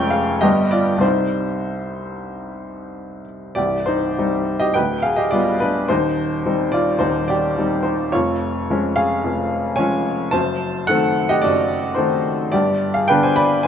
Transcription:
0.00 0.41 F1 medium
0.00 0.40 F2 medium
0.00 0.38 G#3 soft
0.00 0.39 C#4 soft
0.00 0.46 C#5 medium
0.00 0.11 G5 loud
0.10 0.40 G#4 medium
0.10 0.42 F5 medium
0.41 1.02 G1 medium
0.41 1.02 G2 medium
0.41 0.97 G3 soft
0.41 1.00 B3 soft
0.41 1.00 D4 medium
0.41 0.70 G4 medium
0.41 0.72 D#5 medium
0.71 1.01 F4 medium
0.71 1.03 D5 medium
0.98 3.50 C2 medium
0.98 3.51 G3 soft
0.98 3.51 C4 soft
0.98 3.25 C5 medium
1.02 3.22 D#4 medium
3.55 4.71 C1 soft
3.55 4.72 C2 medium
3.55 3.84 G4 medium
3.55 3.86 D5 medium
3.86 4.18 D#4 soft
3.86 4.60 C5 medium
4.19 4.72 G3 soft
4.19 4.72 C4 soft
4.19 4.72 D#4 medium
4.60 4.74 G4 medium
4.60 4.74 D#5 medium
4.74 5.87 D1 soft
4.74 5.87 D2 medium
4.74 5.02 B4 medium
4.74 5.03 G5 medium
5.02 5.17 G#4 medium
5.02 5.17 F5 medium
5.16 5.31 G4 medium
5.16 5.32 D#5 medium
5.31 5.86 G3 soft
5.31 5.87 B3 soft
5.31 5.59 F4 medium
5.31 5.60 D5 medium
5.60 5.88 D4 medium
5.60 5.89 B4 medium
5.88 6.98 D#1 soft
5.88 6.98 D#2 medium
5.88 6.44 D#4 medium
5.88 6.73 C5 medium
6.46 6.97 G3 soft
6.46 6.97 C4 soft
6.46 6.97 D#4 soft
6.72 6.99 F4 medium
6.72 7.00 D5 medium
6.99 8.09 D#1 soft
6.99 8.09 D#2 soft
6.99 7.26 D#4 medium
6.99 7.28 C5 medium
7.28 7.81 G4 medium
7.28 7.84 D5 medium
7.58 8.10 G3 soft
7.58 8.09 C4 soft
7.58 7.82 D#4 soft
7.83 8.10 D#4 medium
7.83 8.12 C5 medium
8.12 9.22 F1 soft
8.12 9.23 F2 medium
8.12 8.94 F4 medium
8.12 8.98 C#5 medium
8.70 9.21 F3 soft
8.70 9.21 G#3 soft
8.70 9.22 C#4 soft
8.96 9.75 G#4 medium
8.96 9.79 F5 medium
9.24 10.31 F1 medium
9.24 10.31 F2 soft
9.76 10.31 F3 soft
9.76 10.30 G#3 soft
9.76 10.31 C#4 medium
9.76 10.29 C#5 medium
9.76 10.33 G#5 medium
10.31 11.40 F#1 soft
10.31 11.40 F#2 medium
10.31 10.84 C5 medium
10.31 10.88 A5 medium
10.87 11.40 D#3 soft
10.87 11.40 A3 soft
10.87 11.40 C4 medium
10.87 11.27 A4 medium
10.87 11.29 F#5 medium
11.29 11.43 G4 medium
11.29 11.43 D#5 medium
11.42 12.50 F#1 soft
11.42 12.49 F#2 medium
11.42 11.94 F#4 medium
11.42 11.97 D5 medium
11.95 12.48 D#3 soft
11.95 12.49 A3 soft
11.95 12.49 C4 medium
11.95 12.22 D#4 soft
11.95 12.24 C5 medium
12.52 13.61 G1 soft
12.52 13.61 G2 medium
12.52 12.91 G4 medium
12.52 12.94 D5 medium
12.94 13.08 G#4 medium
12.94 13.08 F5 medium
13.08 13.60 D3 medium
13.08 13.61 B3 soft
13.08 13.61 D4 medium
13.08 13.22 B4 medium
13.08 13.22 G5 medium
13.23 13.36 C5 medium
13.23 13.37 G#5 medium
13.36 13.62 D5 medium
13.36 13.63 B5 medium
13.63 13.67 G#5 medium

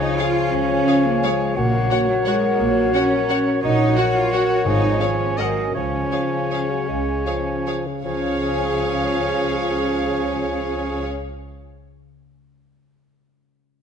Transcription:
0.00 0.52 C#3 soft
0.00 1.52 F3 soft
0.00 0.68 G#3 soft
0.00 0.19 D#4 medium
0.00 0.86 F4 soft
0.00 1.53 G#4 medium
0.00 1.52 C#5 soft
0.00 1.53 C#5 medium
0.00 1.53 F5 medium
0.00 1.58 G#5 soft
0.18 1.22 C#4 soft
0.18 0.53 F4 medium
0.18 0.26 G#4 soft
0.18 0.27 C#5 soft
0.18 0.27 F5 soft
0.36 1.39 G#4 soft
0.53 0.82 C#2 medium
0.53 1.58 C#3 soft
0.53 1.06 C#4 medium
0.70 1.04 G#3 soft
0.87 1.58 F4 soft
0.87 0.95 G#4 soft
0.87 0.96 C#5 soft
0.87 0.95 F5 soft
1.05 1.58 G#3 soft
1.05 1.23 A#3 medium
1.23 1.56 G#3 medium
1.23 2.25 C#4 soft
1.23 1.32 G#4 soft
1.23 1.31 C#5 medium
1.23 1.31 F5 soft
1.40 1.58 G#4 soft
1.56 1.85 A#1 medium
1.56 2.59 A#2 soft
1.56 3.59 F#3 medium
1.56 2.09 A#3 medium
1.56 3.61 F#4 medium
1.56 3.59 A#4 medium
1.56 3.59 C#5 medium
1.56 3.59 C#5 soft
1.56 3.62 F#5 medium
1.73 2.07 A#3 soft
1.90 2.93 F#4 soft
1.90 1.99 F#4 soft
1.90 1.99 C#5 soft
1.90 1.99 F#5 medium
2.08 2.16 F#3 medium
2.08 2.76 A#3 soft
2.26 2.60 G#3 medium
2.26 3.29 C#4 soft
2.26 2.35 F#4 soft
2.26 2.34 C#5 medium
2.26 2.34 F#5 soft
2.44 3.46 A#4 soft
2.60 2.88 A#1 medium
2.60 3.62 A#2 soft
2.60 2.94 A#3 medium
2.77 3.11 A#3 soft
2.94 3.46 C#4 medium
2.94 3.02 F#4 medium
2.94 3.96 F#4 soft
2.94 3.03 C#5 soft
2.94 3.02 F#5 soft
3.12 3.78 A#3 soft
3.29 3.38 F#4 soft
3.29 3.38 C#5 soft
3.29 3.37 F#5 soft
3.47 4.49 A#4 soft
3.62 3.91 A#1 medium
3.62 4.68 A#2 medium
3.62 4.67 F#3 soft
3.62 3.94 D#4 medium
3.62 4.28 F#4 medium
3.62 4.68 A#4 medium
3.62 5.39 C#5 soft
3.62 4.28 C#5 medium
3.62 4.68 F#5 soft
3.79 4.14 A#3 soft
3.96 4.15 F#4 medium
3.96 4.68 F#4 soft
3.96 4.06 F#4 soft
3.96 4.05 C#5 soft
3.96 4.05 F#5 soft
4.15 4.67 A#3 soft
4.15 4.33 F4 medium
4.32 5.40 C#4 soft
4.32 4.65 F#4 soft
4.32 4.66 F#4 medium
4.32 4.41 F#4 soft
4.32 4.65 C#5 soft
4.32 4.41 C#5 soft
4.32 4.42 F#5 soft
4.50 4.67 A#4 soft
4.66 4.95 G#1 medium
4.66 5.16 G#2 medium
4.66 5.37 G#2 soft
4.66 5.38 F3 soft
4.66 5.00 D#4 medium
4.66 5.40 G#4 soft
4.66 4.99 C#5 soft
4.66 4.99 F5 soft
4.66 5.75 G#5 soft
4.83 5.18 G#3 soft
5.00 5.38 C#4 medium
5.00 5.40 F4 soft
5.00 5.08 G#4 soft
5.00 5.09 C#5 soft
5.00 5.08 F5 soft
5.00 5.37 F5 soft
5.19 6.50 G#3 soft
5.19 5.28 C5 soft
5.37 5.69 G#1 soft
5.37 5.76 G#2 soft
5.37 5.74 F#3 soft
5.37 5.75 C4 medium
5.37 5.74 F#4 soft
5.37 5.74 A#4 soft
5.37 5.46 A#4 soft
5.37 5.74 A#4 soft
5.37 5.74 D#5 soft
5.37 5.46 D#5 soft
5.37 5.47 F#5 soft
5.57 5.76 F#4 soft
5.57 5.76 D#5 soft
5.74 6.06 C#2 soft
5.74 6.88 C#3 soft
5.74 6.08 F3 soft
5.74 7.63 C#4 medium
5.74 7.87 G#4 soft
5.74 7.83 G#4 soft
5.74 7.83 C#5 soft
5.74 7.86 F5 soft
5.74 7.83 G#5 soft
5.93 6.31 C#4 soft
6.12 6.67 F3 soft
6.12 7.26 F4 soft
6.12 6.20 G#4 soft
6.12 6.20 C#5 soft
6.12 6.21 F5 soft
6.32 7.07 C#4 soft
6.51 7.66 G#3 soft
6.51 6.59 G#4 soft
6.51 6.59 C#5 soft
6.51 6.60 F5 soft
6.71 6.88 F#3 soft
6.71 7.86 C#5 soft
6.88 7.20 C#2 soft
6.88 8.04 C#3 soft
6.88 7.27 G#3 soft
7.08 7.46 C#4 soft
7.26 7.88 F3 soft
7.26 8.25 F4 soft
7.26 7.35 G#4 soft
7.26 7.34 C#5 soft
7.26 7.35 F5 soft
7.47 8.18 C#4 soft
7.67 8.11 G#3 soft
7.67 7.76 G#4 soft
7.67 7.75 C#5 soft
7.67 7.75 F5 soft
7.87 8.04 C#3 soft
7.87 8.32 C#5 soft
8.04 11.06 C#2 soft
8.04 11.72 C#3 soft
8.04 11.95 C#3 soft
8.04 11.06 F3 soft
8.04 11.06 C#4 medium
8.04 11.06 F4 soft
8.04 11.06 G#4 soft
8.04 11.06 C#5 soft
8.04 11.06 F5 soft
8.04 11.06 G#5 soft
8.12 11.80 G#3 soft
8.19 11.83 C#4 soft
8.26 11.87 F4 soft
8.33 11.90 C#5 soft

